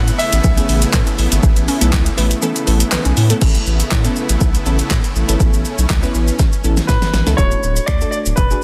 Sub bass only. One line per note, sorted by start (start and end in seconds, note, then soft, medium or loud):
0.00 0.11 A2 loud
0.33 0.40 A1 medium
0.44 0.60 B1 medium
0.69 0.85 A1 medium
0.94 1.02 A2 loud
1.19 1.27 A1 medium
1.32 1.39 G#1 loud
1.43 1.68 A1 loud
1.81 1.95 B1 medium
1.93 2.09 C#2 loud
2.18 2.34 A1 loud
2.67 2.84 A1 medium
2.92 2.97 B1 medium
3.05 3.13 B1 loud
3.17 3.33 A2 loud
3.42 3.58 A1 loud
3.67 3.83 A1 loud
3.92 4.08 A2 loud
4.29 4.37 A1 medium
4.41 4.57 B1 loud
4.66 4.82 A1 loud
4.91 4.99 A2 loud
5.16 5.24 A1 medium
5.29 5.36 G#1 loud
5.40 5.65 A1 loud
5.78 5.86 B1 medium
5.90 6.06 C#2 medium
6.15 6.31 A1 medium
6.64 6.80 A1 medium
6.89 6.97 A2 loud
7.14 7.22 A1 medium
7.27 7.34 C#2 medium
7.38 7.54 D1 loud
7.63 7.79 D1 medium
7.88 8.04 D2 loud
8.26 8.33 D1 loud
8.38 8.54 E1 loud